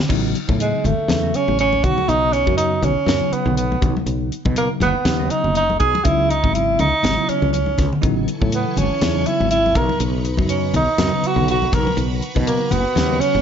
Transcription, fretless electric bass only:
0.10 0.33 A1 medium
0.49 0.72 A2 medium
0.84 0.97 G#1 medium
0.98 muted fretless electric bass stroke soft
1.08 1.32 E2 medium
1.34 muted fretless electric bass stroke soft
1.48 1.81 A1 medium
1.84 1.96 B1 medium
2.08 2.44 B1 medium
2.48 2.80 F#2 medium
2.82 2.95 B1 medium
3.06 3.20 F#2 medium
3.32 muted fretless electric bass stroke soft
3.46 3.79 B1 medium
3.82 3.95 B1 loud
4.06 4.29 B1 medium
4.46 4.68 B2 medium
4.80 4.93 F#1 medium
4.94 muted fretless electric bass stroke soft
5.05 5.28 D#2 medium
5.31 muted fretless electric bass stroke soft
5.44 5.77 F#1 medium
5.80 5.93 B1 medium
6.05 6.41 C#2 medium
6.44 6.77 G#1 medium
6.79 6.92 C#2 medium
7.04 7.16 G#1 medium
7.29 muted fretless electric bass stroke soft
7.42 7.75 C#2 medium
7.79 7.91 C#2 medium
8.03 8.26 A1 medium
8.42 8.64 A2 medium
8.76 8.89 G#1 medium
8.90 muted fretless electric bass stroke soft
9.02 9.24 E2 medium
9.26 muted fretless electric bass stroke soft
9.40 9.73 G#1 medium
9.76 9.88 B1 medium
10.00 10.36 B1 medium
10.39 10.72 F#2 medium
10.74 10.87 B1 medium
10.98 11.11 F#2 medium
11.23 muted fretless electric bass stroke soft
11.36 11.70 B1 medium
11.73 11.86 B1 medium
11.97 12.20 B1 medium
12.37 12.59 B2 medium
12.71 12.84 F#1 medium
12.85 muted fretless electric bass stroke soft
12.96 13.19 D#2 medium
13.20 muted fretless electric bass stroke soft
13.35 13.42 F#1 medium

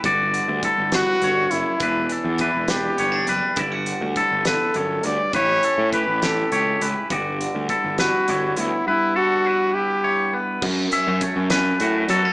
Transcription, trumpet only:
0.92 1.53 F#4 loud
1.51 2.10 E4 medium
2.40 2.71 E4 medium
2.70 3.36 G4 medium
4.46 5.06 A4 medium
5.05 5.34 D5 medium
5.34 5.89 C#5 loud
5.93 6.26 B4 medium
6.24 6.90 A4 medium
8.01 8.60 F#4 medium
8.58 8.87 E4 medium
8.88 9.18 E4 medium
9.16 9.75 F#4 loud
9.74 10.40 G4 medium

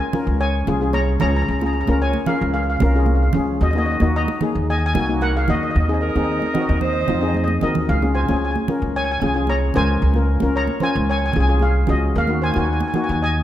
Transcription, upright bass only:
0.27 0.64 C#2 loud
0.68 1.17 C2 loud
1.21 1.45 C#2 loud
1.48 1.85 C#2 medium
1.88 2.12 C#2 medium
2.41 2.78 C#2 loud
2.82 3.31 C2 loud
3.34 3.59 C#2 medium
3.61 3.98 D#2 loud
4.01 4.26 D#2 medium
4.55 4.92 D#2 loud
4.95 5.44 C2 loud
5.49 5.73 D#2 medium
5.75 6.12 D#2 loud
6.15 6.40 D#2 medium
6.69 7.05 D#2 loud
7.09 7.58 F2 medium
7.62 7.86 D#2 medium
7.89 8.25 C#2 loud
8.29 8.53 C#2 medium
8.82 9.18 C#2 medium
9.22 9.71 C2 loud
9.75 10.00 C#2 loud
10.02 10.39 C#2 loud
10.42 10.66 C#2 medium
10.95 11.32 C#2 loud
11.36 11.85 C2 loud
11.89 12.13 C#2 loud
12.15 12.52 D#2 medium
12.56 12.80 D#2 medium
13.09 13.43 D#2 loud

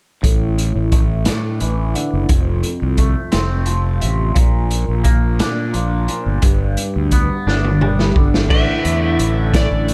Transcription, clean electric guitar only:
0.23 1.95 A2 medium
0.92 2.30 A3 medium
1.26 2.29 D4 medium
1.61 2.30 E3 medium
1.94 2.29 D3 medium
2.29 4.02 F2 medium
2.98 4.36 A3 medium
3.32 4.36 C4 medium
3.66 4.36 F3 medium
4.01 4.34 C3 medium
4.35 6.07 A#2 medium
5.04 6.42 A#3 medium
5.40 7.47 D4 medium
5.73 6.42 F3 medium
6.08 6.43 A#2 medium
6.42 8.15 G2 medium
7.13 8.50 B3 medium
7.47 8.50 D4 medium
7.81 8.50 G3 medium
8.16 8.49 D3 medium
8.49 9.94 A2 medium
8.49 9.94 D3 medium
8.49 9.94 E3 medium
8.49 9.94 A3 medium
8.49 9.94 D4 medium

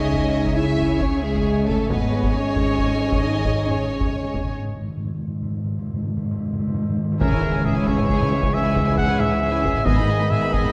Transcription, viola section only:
0.00 1.86 G#4 medium
0.00 1.86 C#5 medium
1.90 4.52 G#4 medium
1.90 4.52 C#5 medium
7.20 7.31 C#4 soft
7.31 7.43 E4 soft
7.42 7.54 C#4 soft
7.53 7.65 E4 soft
7.64 7.75 C#4 soft
7.75 7.87 E4 soft
7.87 7.98 C#4 soft
7.99 8.10 E4 soft
8.09 8.20 C#4 soft
8.19 8.31 E4 soft
8.30 8.42 C#4 soft
8.42 8.53 E4 soft
8.52 8.63 C#4 soft
8.64 8.76 E4 medium
8.75 8.87 C#4 soft
8.87 8.98 E4 soft
8.98 9.08 C#4 medium
9.09 9.20 E4 medium
9.19 9.31 C#4 medium
9.31 9.42 E4 soft
9.42 9.52 C#4 soft
9.51 9.64 E4 soft
9.64 9.75 C#4 soft
9.74 9.86 E4 medium
9.85 9.96 B3 medium
9.97 10.08 D#4 soft
10.08 10.20 B3 soft
10.19 10.30 D#4 soft
10.31 10.41 B3 soft
10.41 10.53 D#4 medium
10.53 10.64 B3 soft
10.64 10.72 D#4 soft

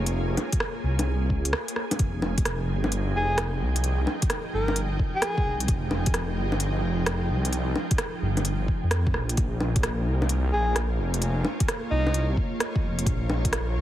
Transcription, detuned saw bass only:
0.00 0.36 F1 loud
0.84 1.32 C2 loud
1.30 1.53 C#2 medium
1.99 2.70 F1 loud
2.68 3.14 G1 loud
3.15 3.62 F1 loud
3.61 4.06 C2 loud
4.53 4.98 G1 medium
5.45 5.67 C2 loud
5.68 6.39 F1 loud
6.37 6.83 G1 loud
6.83 7.31 F1 medium
7.30 7.75 C2 loud
8.22 8.67 G1 loud
8.83 9.15 F2 loud
9.14 9.36 A#1 loud
9.38 10.08 A#1 loud
10.06 10.52 C2 loud
10.53 11.00 A#1 loud
10.99 11.44 F1 loud
11.91 12.36 C2 loud
12.83 13.05 F1 loud
13.06 13.77 A#1 loud
13.76 13.81 C2 loud

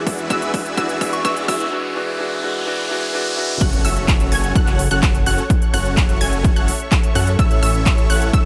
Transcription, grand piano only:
0.00 0.28 E3 medium
0.00 0.28 G#3 medium
0.00 0.29 D4 medium
0.00 0.29 F#4 medium
0.29 0.75 E3 medium
0.29 0.75 G#3 medium
0.29 0.76 D4 medium
0.29 0.76 F#4 medium
0.76 1.22 E3 medium
0.76 1.23 G#3 medium
0.76 1.23 D4 medium
0.76 1.23 F#4 medium
1.24 1.69 E3 medium
1.24 1.70 G#3 medium
1.24 1.70 D4 medium
1.24 1.71 F#4 medium
1.71 1.93 E3 medium
1.71 1.94 G#3 medium
1.71 1.94 D4 medium
1.71 1.94 F#4 medium
1.94 2.17 E3 medium
1.94 2.17 G#3 medium
1.94 2.18 D4 medium
1.94 2.18 F#4 loud
2.18 2.40 E3 medium
2.18 2.41 G#3 medium
2.18 2.41 D4 medium
2.18 2.42 F#4 loud
2.42 2.64 E3 medium
2.42 2.64 G#3 medium
2.42 2.65 D4 medium
2.42 2.65 F#4 loud
2.65 2.87 E3 medium
2.65 2.88 G#3 medium
2.65 2.88 D4 medium
2.65 2.89 F#4 loud
2.89 3.11 E3 medium
2.89 3.12 G#3 medium
2.89 3.12 D4 medium
2.89 3.12 F#4 loud
3.12 3.35 E3 medium
3.12 3.35 G#3 medium
3.12 3.36 D4 medium
3.12 3.36 F#4 loud
3.36 3.59 E3 medium
3.36 3.59 G#3 medium
3.36 3.59 D4 medium
3.36 3.60 F#4 medium

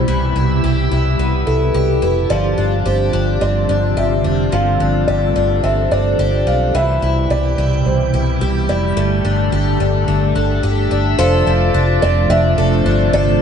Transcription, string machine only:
0.00 2.26 B2 medium
0.00 2.27 C3 medium
0.00 6.71 G3 medium
0.00 2.26 E4 medium
0.00 2.27 G4 medium
2.31 6.71 D3 medium
2.31 6.71 C4 medium
2.31 6.71 F4 medium
2.31 4.51 G4 medium
4.53 6.73 A4 medium
6.75 8.95 B2 medium
6.75 8.95 C3 medium
6.75 11.16 G3 medium
6.75 8.95 E4 medium
6.75 11.16 G4 medium
8.97 11.17 D3 medium
8.97 11.17 A3 medium
8.97 11.17 A4 medium
11.19 13.42 C3 medium
11.19 13.42 F3 medium
11.19 13.42 A3 medium
11.19 13.42 D4 medium
11.19 13.42 F4 medium

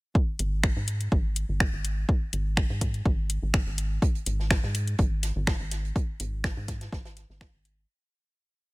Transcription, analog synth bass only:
0.39 0.72 G#1 loud
0.76 1.08 G#2 medium
1.12 1.44 G#1 medium
1.49 1.68 G#1 medium
1.73 2.05 G#1 medium
2.33 2.65 G#1 medium
2.70 3.02 G#2 medium
3.06 3.38 G#1 medium
3.42 3.61 G#1 medium
3.67 3.98 G#1 medium
4.26 4.59 G#1 loud
4.63 4.95 G#2 medium
4.99 5.32 G#1 medium
5.36 5.55 G#1 loud
5.60 5.92 G#1 medium
6.20 6.53 G#1 loud
6.57 6.89 G#2 medium
6.92 7.25 G#1 medium
7.30 7.48 G#1 loud
7.54 7.85 G#1 medium

